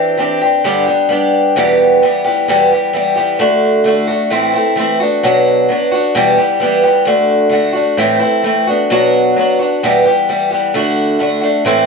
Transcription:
steel-string acoustic guitar
Already playing: E3 C4 D4 G4
0.17 E3 C4 D4 G4
0.41 C4 D4 G4
0.64 G2 D3 G3 B3 D4 G4
0.86 G3 B3 D4 G4
1.09 G3 B3 D4 G4
1.56 E2 B2 E3 G3 B3 G4
2.02 E3 G3 B3 G4
2.24 E3 G3 B3 G4
2.48 E2 B2 E3 G3 B3 G4
2.72 E3 G3 B3 G4
2.93 E3 G3 B3 G4
3.16 E3 G3 B3 G4
3.39 D3 A3 D4 F#4
3.84 D3 A3 D4 F#4
4.07 A3 D4 F#4
4.30 A2 E3 A3 C4 E4
4.53 A3 C4 E4
4.76 E3 A3 C4
4.80 E4
5.00 B3 D4 F#4
5.23 B2 F#3 B3 D4 F#4
5.69 F#3 B3 D4 F#4
5.92 B3 D4 F#4
6.15 E2 B2 E3 G3 B3 G4
6.38 E3 G3 B3 G4
6.60 E3 G3 B3 G4
6.84 E3 G3 B3 G4
7.05 D3 A3 D4 F#4
7.49 D3 A3 D4 F#4
7.73 D4 F#4
7.77 A3
7.97 A2 E3 A3 C4 E4
8.20 C4 E4
8.24 A3
8.43 E3 A3 C4 E4
8.67 B3 D4 F#4
8.90 B2 F#3 B3 D4 F#4
9.36 F#3 B3 D4
9.40 F#4
9.59 B3 D4 F#4
9.83 E2 B2 E3 G3 B3 G4
10.06 E3 G3 B3 G4
10.29 E3 G3 B3 G4
10.51 E3 G3 B3 G4
10.74 D3 A3 D4 F#4
11.19 D3 A3 D4 F#4
11.41 A3 D4 F#4
11.65 A2 E3 A3 C4 E4

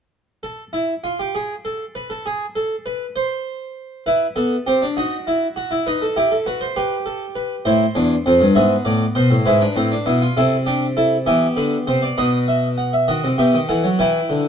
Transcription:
harpsichord
0.43 A4
0.73 E4
1.04 F4
1.19 G4
1.35 G#4
1.65 A4
1.95 B4
2.10 A4
2.26 G#4
2.55 A4
2.86 B4
3.16 C5
4.06 E4 B4
4.36 B3 A4
4.66 C4 G4
4.82 D4
4.97 D#4 F#4
5.27 E4
5.56 F#4
5.71 E4
5.86 D#4 B4
6.02 A4
6.16 E4 G4
6.31 A4
6.46 F#4 B4
6.61 C5
6.76 G4 B4
7.06 A4
7.35 B4
7.65 A2 E4 C5
7.95 E2 D4
8.26 F2 C4
8.41 G2
8.55 G#2 B3 E5
8.85 A2 D5
9.15 B2 C5
9.31 A2
9.46 G#2 E4 B4
9.61 D4
9.76 A2 C4
9.91 D4
10.06 B2 E4
10.22 F4
10.37 C3 E4 A4
10.66 D4 G4
10.97 E4 A4
11.26 E3 B3 G4 E5
11.57 D3 B4
11.87 C3 C5
12.02 D5
12.18 B2 D#4 B4 D#5
12.48 E5
12.78 F#5
12.93 E5
13.08 D#3 F#4 D#5
13.24 C3
13.38 B2 G4 E5
13.53 D#3
13.69 E3 A4 F#5
13.84 F#3
13.99 E3 E4 B4 G5
14.29 D3

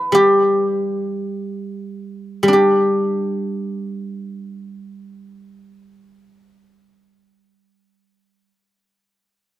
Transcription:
guzheng
Already playing: E3 B4 D5
0.12 G3 G4
2.43 G3
2.48 D4
2.53 G4

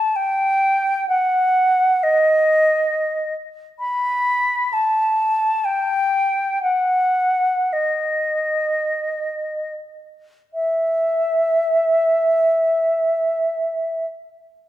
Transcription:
flute
Already playing: A5
0.16 G5
1.09 F#5
2.03 D#5
3.79 B5
4.73 A5
5.65 G5
6.63 F#5
7.73 D#5
10.54 E5

